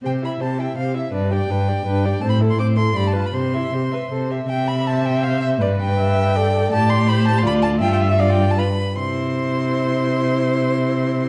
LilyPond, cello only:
\new Staff \with { instrumentName = "Cello" } { \clef bass \time 3/4 \key c \major \tempo 4 = 160 c4 c4 c4 | g,4 g,4 g,4 | a,4 a,4 g,4 | c4 c4 c4 |
c2. | g,2. | a,2 d,4 | g,2~ g,8 r8 |
c2.~ | c2. | }